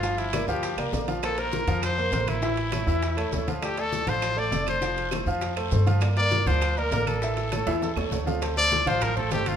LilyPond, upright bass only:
\new Staff \with { instrumentName = "Upright bass" } { \clef bass \time 4/4 \key d \minor \tempo 4 = 200 g,,4. d,4 c,8 bes,,4~ | bes,,4. f,4. a,,4~ | a,,4. e,4. d,4~ | d,4. a,,4. f,,4~ |
f,,4. f,4. g,4~ | g,4. d,4. a,,4~ | a,,4. e,4 e,8 d,4~ | d,4. a,,4. g,,4 | }